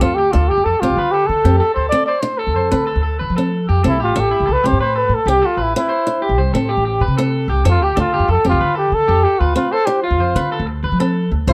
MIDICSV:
0, 0, Header, 1, 7, 480
1, 0, Start_track
1, 0, Tempo, 318134
1, 32, Time_signature, 12, 3, 24, 8
1, 17396, End_track
2, 0, Start_track
2, 0, Title_t, "Clean electric guitar"
2, 0, Program_c, 0, 27
2, 18, Note_on_c, 0, 69, 82
2, 253, Note_off_c, 0, 69, 0
2, 274, Note_on_c, 0, 67, 65
2, 489, Note_off_c, 0, 67, 0
2, 495, Note_on_c, 0, 69, 66
2, 732, Note_off_c, 0, 69, 0
2, 769, Note_on_c, 0, 67, 74
2, 986, Note_off_c, 0, 67, 0
2, 992, Note_on_c, 0, 69, 64
2, 1221, Note_off_c, 0, 69, 0
2, 1245, Note_on_c, 0, 67, 64
2, 1468, Note_off_c, 0, 67, 0
2, 1484, Note_on_c, 0, 71, 86
2, 1708, Note_off_c, 0, 71, 0
2, 1719, Note_on_c, 0, 69, 50
2, 2174, Note_off_c, 0, 69, 0
2, 2184, Note_on_c, 0, 67, 72
2, 2414, Note_on_c, 0, 69, 66
2, 2418, Note_off_c, 0, 67, 0
2, 2634, Note_off_c, 0, 69, 0
2, 2652, Note_on_c, 0, 69, 67
2, 3120, Note_off_c, 0, 69, 0
2, 3142, Note_on_c, 0, 72, 62
2, 3603, Note_off_c, 0, 72, 0
2, 3609, Note_on_c, 0, 69, 70
2, 3850, Note_off_c, 0, 69, 0
2, 3862, Note_on_c, 0, 72, 59
2, 4092, Note_off_c, 0, 72, 0
2, 4098, Note_on_c, 0, 71, 65
2, 4320, Note_off_c, 0, 71, 0
2, 4326, Note_on_c, 0, 69, 72
2, 4553, Note_off_c, 0, 69, 0
2, 4571, Note_on_c, 0, 69, 47
2, 4812, Note_off_c, 0, 69, 0
2, 4818, Note_on_c, 0, 71, 71
2, 5056, Note_off_c, 0, 71, 0
2, 5078, Note_on_c, 0, 69, 73
2, 5534, Note_off_c, 0, 69, 0
2, 5563, Note_on_c, 0, 67, 64
2, 5786, Note_off_c, 0, 67, 0
2, 5792, Note_on_c, 0, 69, 82
2, 6023, Note_off_c, 0, 69, 0
2, 6035, Note_on_c, 0, 67, 68
2, 6265, Note_off_c, 0, 67, 0
2, 6276, Note_on_c, 0, 69, 70
2, 6501, Note_off_c, 0, 69, 0
2, 6507, Note_on_c, 0, 64, 77
2, 6739, Note_off_c, 0, 64, 0
2, 6745, Note_on_c, 0, 69, 58
2, 6979, Note_off_c, 0, 69, 0
2, 7000, Note_on_c, 0, 67, 65
2, 7227, Note_off_c, 0, 67, 0
2, 7249, Note_on_c, 0, 71, 83
2, 7471, Note_off_c, 0, 71, 0
2, 7477, Note_on_c, 0, 69, 54
2, 7934, Note_off_c, 0, 69, 0
2, 7947, Note_on_c, 0, 67, 73
2, 8176, Note_on_c, 0, 69, 66
2, 8181, Note_off_c, 0, 67, 0
2, 8407, Note_off_c, 0, 69, 0
2, 8413, Note_on_c, 0, 71, 65
2, 8881, Note_off_c, 0, 71, 0
2, 8887, Note_on_c, 0, 72, 68
2, 9357, Note_off_c, 0, 72, 0
2, 9385, Note_on_c, 0, 67, 74
2, 9619, Note_off_c, 0, 67, 0
2, 9627, Note_on_c, 0, 72, 61
2, 9856, Note_off_c, 0, 72, 0
2, 9862, Note_on_c, 0, 69, 73
2, 10092, Note_on_c, 0, 67, 88
2, 10097, Note_off_c, 0, 69, 0
2, 10321, Note_off_c, 0, 67, 0
2, 10339, Note_on_c, 0, 67, 59
2, 10576, Note_off_c, 0, 67, 0
2, 10583, Note_on_c, 0, 71, 79
2, 10817, Note_off_c, 0, 71, 0
2, 10826, Note_on_c, 0, 69, 80
2, 11287, Note_off_c, 0, 69, 0
2, 11309, Note_on_c, 0, 67, 67
2, 11539, Note_off_c, 0, 67, 0
2, 11545, Note_on_c, 0, 69, 83
2, 11778, Note_off_c, 0, 69, 0
2, 11802, Note_on_c, 0, 67, 71
2, 12008, Note_off_c, 0, 67, 0
2, 12014, Note_on_c, 0, 69, 74
2, 12252, Note_off_c, 0, 69, 0
2, 12277, Note_on_c, 0, 67, 81
2, 12500, Note_off_c, 0, 67, 0
2, 12506, Note_on_c, 0, 69, 55
2, 12738, Note_off_c, 0, 69, 0
2, 12757, Note_on_c, 0, 67, 72
2, 12979, Note_off_c, 0, 67, 0
2, 12985, Note_on_c, 0, 71, 78
2, 13198, Note_off_c, 0, 71, 0
2, 13204, Note_on_c, 0, 69, 57
2, 13674, Note_off_c, 0, 69, 0
2, 13698, Note_on_c, 0, 67, 82
2, 13933, Note_off_c, 0, 67, 0
2, 13952, Note_on_c, 0, 69, 69
2, 14180, Note_off_c, 0, 69, 0
2, 14192, Note_on_c, 0, 71, 73
2, 14648, Note_off_c, 0, 71, 0
2, 14674, Note_on_c, 0, 72, 76
2, 15128, Note_off_c, 0, 72, 0
2, 15142, Note_on_c, 0, 65, 81
2, 15374, Note_off_c, 0, 65, 0
2, 15392, Note_on_c, 0, 72, 61
2, 15619, Note_off_c, 0, 72, 0
2, 15633, Note_on_c, 0, 71, 70
2, 15859, Note_off_c, 0, 71, 0
2, 15874, Note_on_c, 0, 69, 90
2, 16082, Note_off_c, 0, 69, 0
2, 16356, Note_on_c, 0, 71, 84
2, 16581, Note_off_c, 0, 71, 0
2, 16603, Note_on_c, 0, 69, 78
2, 17052, Note_off_c, 0, 69, 0
2, 17334, Note_on_c, 0, 72, 88
2, 17396, Note_off_c, 0, 72, 0
2, 17396, End_track
3, 0, Start_track
3, 0, Title_t, "Trumpet"
3, 0, Program_c, 1, 56
3, 22, Note_on_c, 1, 65, 77
3, 222, Note_on_c, 1, 67, 75
3, 245, Note_off_c, 1, 65, 0
3, 472, Note_on_c, 1, 65, 67
3, 495, Note_off_c, 1, 67, 0
3, 731, Note_on_c, 1, 67, 74
3, 754, Note_off_c, 1, 65, 0
3, 972, Note_on_c, 1, 69, 81
3, 994, Note_off_c, 1, 67, 0
3, 1210, Note_on_c, 1, 65, 82
3, 1233, Note_off_c, 1, 69, 0
3, 1677, Note_on_c, 1, 67, 83
3, 1700, Note_off_c, 1, 65, 0
3, 1910, Note_on_c, 1, 69, 81
3, 1932, Note_off_c, 1, 67, 0
3, 2376, Note_off_c, 1, 69, 0
3, 2385, Note_on_c, 1, 69, 78
3, 2621, Note_off_c, 1, 69, 0
3, 2630, Note_on_c, 1, 72, 78
3, 2844, Note_off_c, 1, 72, 0
3, 2853, Note_on_c, 1, 74, 94
3, 3093, Note_off_c, 1, 74, 0
3, 3103, Note_on_c, 1, 74, 82
3, 3332, Note_on_c, 1, 72, 75
3, 3355, Note_off_c, 1, 74, 0
3, 3593, Note_on_c, 1, 69, 74
3, 3616, Note_off_c, 1, 72, 0
3, 4576, Note_off_c, 1, 69, 0
3, 5852, Note_on_c, 1, 64, 78
3, 6050, Note_off_c, 1, 64, 0
3, 6083, Note_on_c, 1, 65, 81
3, 6334, Note_on_c, 1, 67, 76
3, 6357, Note_off_c, 1, 65, 0
3, 6825, Note_on_c, 1, 71, 86
3, 6848, Note_off_c, 1, 67, 0
3, 7035, Note_on_c, 1, 72, 80
3, 7057, Note_off_c, 1, 71, 0
3, 7235, Note_off_c, 1, 72, 0
3, 7244, Note_on_c, 1, 72, 82
3, 7507, Note_on_c, 1, 71, 79
3, 7530, Note_off_c, 1, 72, 0
3, 7766, Note_on_c, 1, 69, 82
3, 7788, Note_off_c, 1, 71, 0
3, 7976, Note_on_c, 1, 67, 93
3, 7998, Note_off_c, 1, 69, 0
3, 8235, Note_on_c, 1, 65, 81
3, 8258, Note_off_c, 1, 67, 0
3, 8482, Note_on_c, 1, 64, 72
3, 8504, Note_off_c, 1, 65, 0
3, 8686, Note_off_c, 1, 64, 0
3, 8695, Note_on_c, 1, 64, 76
3, 9586, Note_off_c, 1, 64, 0
3, 11611, Note_on_c, 1, 65, 88
3, 11826, Note_on_c, 1, 67, 85
3, 11848, Note_off_c, 1, 65, 0
3, 12050, Note_off_c, 1, 67, 0
3, 12066, Note_on_c, 1, 65, 82
3, 12498, Note_off_c, 1, 65, 0
3, 12538, Note_on_c, 1, 69, 87
3, 12750, Note_off_c, 1, 69, 0
3, 12812, Note_on_c, 1, 65, 87
3, 13231, Note_off_c, 1, 65, 0
3, 13240, Note_on_c, 1, 67, 83
3, 13490, Note_on_c, 1, 69, 93
3, 13512, Note_off_c, 1, 67, 0
3, 13938, Note_on_c, 1, 67, 89
3, 13961, Note_off_c, 1, 69, 0
3, 14172, Note_on_c, 1, 65, 79
3, 14194, Note_off_c, 1, 67, 0
3, 14416, Note_off_c, 1, 65, 0
3, 14425, Note_on_c, 1, 65, 77
3, 14668, Note_on_c, 1, 69, 95
3, 14691, Note_off_c, 1, 65, 0
3, 14871, Note_on_c, 1, 67, 75
3, 14894, Note_off_c, 1, 69, 0
3, 15126, Note_off_c, 1, 67, 0
3, 15136, Note_on_c, 1, 65, 77
3, 16042, Note_off_c, 1, 65, 0
3, 17336, Note_on_c, 1, 64, 89
3, 17396, Note_off_c, 1, 64, 0
3, 17396, End_track
4, 0, Start_track
4, 0, Title_t, "Steel-string acoustic guitar"
4, 0, Program_c, 2, 25
4, 16, Note_on_c, 2, 60, 82
4, 363, Note_off_c, 2, 60, 0
4, 502, Note_on_c, 2, 62, 70
4, 847, Note_off_c, 2, 62, 0
4, 1252, Note_on_c, 2, 60, 68
4, 1586, Note_off_c, 2, 60, 0
4, 2189, Note_on_c, 2, 60, 65
4, 2532, Note_off_c, 2, 60, 0
4, 2900, Note_on_c, 2, 60, 75
4, 3247, Note_off_c, 2, 60, 0
4, 3357, Note_on_c, 2, 62, 67
4, 3712, Note_off_c, 2, 62, 0
4, 4097, Note_on_c, 2, 60, 67
4, 4445, Note_off_c, 2, 60, 0
4, 5097, Note_on_c, 2, 60, 59
4, 5431, Note_off_c, 2, 60, 0
4, 5797, Note_on_c, 2, 60, 69
4, 6138, Note_off_c, 2, 60, 0
4, 7023, Note_on_c, 2, 60, 66
4, 7355, Note_off_c, 2, 60, 0
4, 7970, Note_on_c, 2, 60, 67
4, 8306, Note_off_c, 2, 60, 0
4, 8692, Note_on_c, 2, 60, 82
4, 9028, Note_off_c, 2, 60, 0
4, 9153, Note_on_c, 2, 62, 69
4, 9495, Note_off_c, 2, 62, 0
4, 9879, Note_on_c, 2, 60, 69
4, 10219, Note_off_c, 2, 60, 0
4, 10839, Note_on_c, 2, 60, 68
4, 11179, Note_off_c, 2, 60, 0
4, 11546, Note_on_c, 2, 60, 81
4, 11890, Note_off_c, 2, 60, 0
4, 12022, Note_on_c, 2, 62, 70
4, 12367, Note_off_c, 2, 62, 0
4, 12743, Note_on_c, 2, 60, 63
4, 13087, Note_off_c, 2, 60, 0
4, 14418, Note_on_c, 2, 60, 76
4, 14763, Note_off_c, 2, 60, 0
4, 14892, Note_on_c, 2, 62, 80
4, 15239, Note_off_c, 2, 62, 0
4, 15628, Note_on_c, 2, 60, 71
4, 15969, Note_off_c, 2, 60, 0
4, 16598, Note_on_c, 2, 60, 64
4, 16935, Note_off_c, 2, 60, 0
4, 17317, Note_on_c, 2, 60, 75
4, 17396, Note_off_c, 2, 60, 0
4, 17396, End_track
5, 0, Start_track
5, 0, Title_t, "Upright bass"
5, 0, Program_c, 3, 32
5, 26, Note_on_c, 3, 41, 105
5, 264, Note_off_c, 3, 41, 0
5, 264, Note_on_c, 3, 38, 76
5, 488, Note_off_c, 3, 38, 0
5, 520, Note_on_c, 3, 38, 89
5, 737, Note_off_c, 3, 38, 0
5, 868, Note_on_c, 3, 41, 81
5, 981, Note_off_c, 3, 41, 0
5, 990, Note_on_c, 3, 41, 68
5, 1102, Note_off_c, 3, 41, 0
5, 1235, Note_on_c, 3, 41, 85
5, 1340, Note_off_c, 3, 41, 0
5, 1349, Note_on_c, 3, 36, 72
5, 1451, Note_off_c, 3, 36, 0
5, 1460, Note_on_c, 3, 50, 80
5, 1907, Note_off_c, 3, 50, 0
5, 1949, Note_on_c, 3, 50, 73
5, 2062, Note_off_c, 3, 50, 0
5, 2182, Note_on_c, 3, 41, 90
5, 2408, Note_off_c, 3, 41, 0
5, 2661, Note_on_c, 3, 38, 72
5, 2888, Note_off_c, 3, 38, 0
5, 3724, Note_on_c, 3, 38, 73
5, 3854, Note_off_c, 3, 38, 0
5, 3854, Note_on_c, 3, 41, 75
5, 4085, Note_off_c, 3, 41, 0
5, 4115, Note_on_c, 3, 50, 85
5, 4446, Note_off_c, 3, 50, 0
5, 4460, Note_on_c, 3, 38, 79
5, 4839, Note_on_c, 3, 53, 65
5, 4862, Note_off_c, 3, 38, 0
5, 4949, Note_off_c, 3, 53, 0
5, 4975, Note_on_c, 3, 53, 69
5, 5517, Note_off_c, 3, 53, 0
5, 5570, Note_on_c, 3, 41, 77
5, 5785, Note_off_c, 3, 41, 0
5, 5801, Note_on_c, 3, 36, 97
5, 6051, Note_off_c, 3, 36, 0
5, 6051, Note_on_c, 3, 33, 85
5, 6265, Note_off_c, 3, 33, 0
5, 6281, Note_on_c, 3, 33, 77
5, 6500, Note_off_c, 3, 33, 0
5, 6641, Note_on_c, 3, 36, 74
5, 6750, Note_off_c, 3, 36, 0
5, 6766, Note_on_c, 3, 36, 68
5, 6873, Note_off_c, 3, 36, 0
5, 6998, Note_on_c, 3, 36, 86
5, 7108, Note_off_c, 3, 36, 0
5, 7131, Note_on_c, 3, 43, 73
5, 7218, Note_off_c, 3, 43, 0
5, 7227, Note_on_c, 3, 45, 74
5, 7672, Note_off_c, 3, 45, 0
5, 7684, Note_on_c, 3, 45, 74
5, 7810, Note_off_c, 3, 45, 0
5, 7932, Note_on_c, 3, 36, 81
5, 8164, Note_off_c, 3, 36, 0
5, 8404, Note_on_c, 3, 33, 66
5, 8640, Note_off_c, 3, 33, 0
5, 9492, Note_on_c, 3, 33, 74
5, 9608, Note_off_c, 3, 33, 0
5, 9608, Note_on_c, 3, 36, 75
5, 9841, Note_off_c, 3, 36, 0
5, 9865, Note_on_c, 3, 45, 85
5, 10200, Note_off_c, 3, 45, 0
5, 10217, Note_on_c, 3, 33, 74
5, 10569, Note_on_c, 3, 48, 72
5, 10592, Note_off_c, 3, 33, 0
5, 10670, Note_off_c, 3, 48, 0
5, 10679, Note_on_c, 3, 48, 79
5, 11246, Note_off_c, 3, 48, 0
5, 11283, Note_on_c, 3, 36, 78
5, 11518, Note_off_c, 3, 36, 0
5, 11541, Note_on_c, 3, 41, 100
5, 11795, Note_off_c, 3, 41, 0
5, 11795, Note_on_c, 3, 38, 84
5, 12015, Note_off_c, 3, 38, 0
5, 12023, Note_on_c, 3, 38, 87
5, 12248, Note_off_c, 3, 38, 0
5, 12362, Note_on_c, 3, 41, 75
5, 12487, Note_off_c, 3, 41, 0
5, 12497, Note_on_c, 3, 41, 80
5, 12615, Note_off_c, 3, 41, 0
5, 12750, Note_on_c, 3, 41, 90
5, 12845, Note_off_c, 3, 41, 0
5, 12854, Note_on_c, 3, 36, 83
5, 12973, Note_off_c, 3, 36, 0
5, 12987, Note_on_c, 3, 50, 79
5, 13430, Note_off_c, 3, 50, 0
5, 13458, Note_on_c, 3, 50, 74
5, 13575, Note_off_c, 3, 50, 0
5, 13709, Note_on_c, 3, 41, 97
5, 13931, Note_off_c, 3, 41, 0
5, 14190, Note_on_c, 3, 38, 80
5, 14411, Note_off_c, 3, 38, 0
5, 15247, Note_on_c, 3, 38, 80
5, 15370, Note_off_c, 3, 38, 0
5, 15370, Note_on_c, 3, 41, 76
5, 15599, Note_off_c, 3, 41, 0
5, 15619, Note_on_c, 3, 50, 84
5, 15954, Note_off_c, 3, 50, 0
5, 15987, Note_on_c, 3, 38, 89
5, 16345, Note_on_c, 3, 53, 72
5, 16367, Note_off_c, 3, 38, 0
5, 16457, Note_off_c, 3, 53, 0
5, 16475, Note_on_c, 3, 53, 71
5, 17022, Note_off_c, 3, 53, 0
5, 17072, Note_on_c, 3, 38, 84
5, 17290, Note_off_c, 3, 38, 0
5, 17311, Note_on_c, 3, 36, 112
5, 17396, Note_off_c, 3, 36, 0
5, 17396, End_track
6, 0, Start_track
6, 0, Title_t, "Muted clean electric guitar strokes"
6, 16100, Note_on_c, 9, 29, 63
6, 16251, Note_off_c, 9, 29, 0
6, 17396, End_track
7, 0, Start_track
7, 0, Title_t, "Muted steel-string acoustic guitar strokes"
7, 6271, Note_on_c, 9, 29, 69
7, 6422, Note_off_c, 9, 29, 0
7, 17396, End_track
0, 0, End_of_file